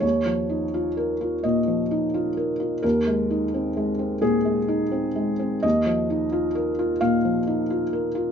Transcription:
\new Staff \with { instrumentName = "Felt piano" } { \time 4/4 \key aes \mixolydian \tempo 4 = 86 << { des''2 ees''2 | bes'2 aes'2 | ees''2 f''2 | } \\ { \tuplet 3/2 { ees,8 f8 ees'8 f'8 bes'8 f'8 bes,8 f8 ees'8 f'8 bes'8 f'8 } | \tuplet 3/2 { ees,8 aes8 ees'8 c'8 aes8 c'8 bes,8 aes8 ees'8 c'8 aes8 c'8 } | \tuplet 3/2 { ees,8 f8 ees'8 f'8 bes'8 f'8 bes,8 f8 ees'8 f'8 bes'8 f'8 } | } >> }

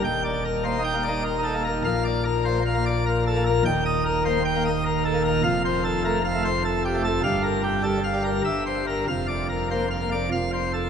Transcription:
<<
  \new Staff \with { instrumentName = "Pipe organ" } { \time 3/4 \key bes \major \tempo 4 = 100 << { g''8 r2 r8 | f''8 r2 r8 | g''8 r2 r8 | f''8 r2 r8 |
f''8 r4. e''8 r8 | f''8 r4. f''8 r8 | } \\ { \tuplet 3/2 { r8 d''8 bes'8 c''8 g''8 d''8 bes'8 a'8 bes'8 } | \tuplet 3/2 { r8 d''8 bes'8 c''8 f''8 d''8 bes'8 a'8 bes'8 } | \tuplet 3/2 { r8 ees''8 bes'8 c''8 g''8 ees''8 bes'8 a'8 bes'8 } | \tuplet 3/2 { r8 c''8 a'8 bes'8 f''8 c''8 a'8 g'8 a'8 } |
\tuplet 3/2 { r8 bes'8 g'8 a'8 f''8 bes'8 r8 c''8 bes'8 } | \tuplet 3/2 { r8 d''8 bes'8 c''8 f''8 d''8 r8 c''8 a'8 } | } >> }
  \new Staff \with { instrumentName = "Pipe organ" } { \clef bass \time 3/4 \key bes \major << { ees,4 bes16 ees'16 bes16 ees'16 r16 ees'16 bes16 r16 | bes,4 bes16 r16 bes16 r8. bes16 r16 | ees,4 bes16 r16 bes16 r8. bes16 r16 | f,4 a16 r16 a16 r8. a16 r16 |
g,4 g16 r16 g16 r16 g,4 | f,4 bes16 r16 bes16 r16 f,4 | } \\ { ees,,2. | bes,,2. | ees,,2. | f,,2. |
g,,2 g,,4 | f,,2 f,,4 | } >> }
>>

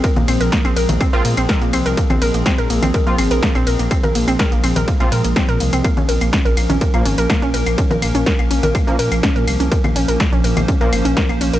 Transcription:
<<
  \new Staff \with { instrumentName = "Synth arpeggio sound" } { \time 4/4 \key bes \minor \tempo 4 = 124 bes'16 bes16 c'16 bes'16 bes16 c'16 bes'16 bes16 c'16 bes'16 bes16 c'16 bes'16 bes16 c'16 bes'16 | bes16 c'16 bes'16 bes16 c'16 bes'16 bes16 c'16 bes'16 bes16 c'16 bes'16 bes16 c'16 bes'16 bes16 | c'16 bes'16 bes16 c'16 bes'16 bes16 c'16 bes'16 bes16 c'16 bes'16 bes16 c'16 bes'16 bes16 c'16 | bes16 des'16 bes'16 bes16 des'16 bes'16 bes16 des'16 bes'16 bes16 des'16 bes'16 bes16 des'16 bes'16 bes16 |
des'16 bes'16 bes16 des'16 bes'16 bes16 des'16 bes'16 bes16 des'16 bes'16 bes16 des'16 bes'16 bes16 des'16 | bes'16 bes16 des'16 bes'16 bes16 des'16 bes'16 bes16 des'16 bes'16 bes16 des'16 bes'16 bes16 des'16 bes'16 | }
  \new Staff \with { instrumentName = "Ambient pad" } { \time 4/4 \key bes \minor << { aes'1~ | aes'1~ | aes'1 | bes'1~ |
bes'1 | c''1 | } \\ { <f aes c'>1~ | <f aes c'>1~ | <f aes c'>1 | <f bes des'>1~ |
<f bes des'>1~ | <f bes des'>1 | } >> }
  \new Staff \with { instrumentName = "Analog polysynth" } { \clef bass \time 4/4 \key bes \minor r2 r16 <f c' f'>16 r4. | r2 r16 <f c' f'>16 r4. | r2 r16 <f c' f'>16 r4. | r2 r16 <bes, f bes>16 r4. |
r2 r16 <bes, f bes>16 r4. | r2 r16 <bes, f bes>16 r4. | }
  \new Staff \with { instrumentName = "Detuned saw bass" } { \clef bass \time 4/4 \key bes \minor r16 bes,,16 bes,,16 bes,,16 r16 bes,,16 bes,,16 bes,,16 r16 bes,,16 bes,16 bes,,16 r16 bes,16 c,16 c,16 | r16 bes,,16 bes,,16 bes,,16 r16 bes,,16 bes,,16 bes,,16 r16 bes,,16 aes,,16 bes,,16 r16 bes,,16 bes,,16 bes,,16 | r16 bes,,16 bes,,16 bes,,16 r16 bes,,16 bes,,16 bes,,16 r16 bes,,16 bes,16 bes,,16 r16 bes,16 c,16 c,16 | r16 bes,,16 bes,,16 bes,,16 r16 bes,,16 bes,,16 bes,,16 r16 bes,,16 aes,,16 bes,,16 r16 bes,,16 bes,,16 bes,,16 |
r16 bes,,16 bes,,16 bes,,16 r16 bes,,16 bes,,16 bes,,16 r16 bes,,16 bes,16 bes,,16 r16 bes,16 c,16 c,16 | r16 bes,,16 bes,,16 bes,,16 r16 bes,,16 bes,,16 bes,,16 r16 bes,,16 aes,,16 bes,,16 r16 bes,,16 bes,,16 bes,,16 | }
  \new DrumStaff \with { instrumentName = "Drums" } \drummode { \time 4/4 <hh bd cymr>16 <cgl hh>16 <cl hho cymr>16 hh16 <hh bd cymr sn>16 <cl hh>16 <hho cymr>16 <cgl hh>16 <cl hh bd cymr>16 hh16 <hho cymr>16 <cl hh>16 <hh bd cymr sn>16 hh16 <cl hho cymr>16 hh16 | <hh bd cymr>16 <cl cgl hh>16 <hho cymr>16 hh16 <cl hh bd cymr sn>16 hh16 <hho cymr>16 <cl cgl hh>16 <hh bd cymr>16 hh16 <cl hho cymr>16 hh16 <hh bd cymr sn>16 <cl hh>16 <hho cymr>16 hh16 | <cl hh bd cymr>16 <cgl hh>16 <hho cymr>16 <cl hh>16 <hh bd cymr sn>16 hh16 <cl hho cymr>16 <cgl hh>16 <hh bd cymr>16 <cl hh sn>16 <hho cymr>16 hh16 <cl hh bd cymr sn>16 hh16 <hho cymr>16 <cl hh>16 | <cl hh bd cymr>16 <cgl hh>16 <hho cymr>16 <cl hh>16 <hh bd cymr sn>16 hh16 <cl hho cymr>16 <cgl hh>16 <hh bd cymr>16 <cl hh>16 <hho cymr>16 hh16 <cl hh bd cymr sn>16 hh16 <hho cymr>16 <cl hh>16 |
<hh bd cymr>16 <cgl hh>16 <cl hho cymr>16 hh16 <hh bd cymr sn>16 <cl hh>16 <hho cymr>16 <cgl hh>16 <cl hh bd cymr>16 hh16 <hho cymr>16 <cl hh>16 <hh bd cymr sn>16 hh16 <cl hho cymr>16 hh16 | <hh bd cymr>16 <cl cgl hh>16 <hho cymr>16 hh16 <cl hh bd cymr sn>16 hh16 <hho cymr>16 <cl cgl hh>16 <hh bd cymr>16 hh16 <cl hho cymr>16 hh16 <hh bd cymr sn>16 <cl hh>16 <hho cymr>16 hh16 | }
>>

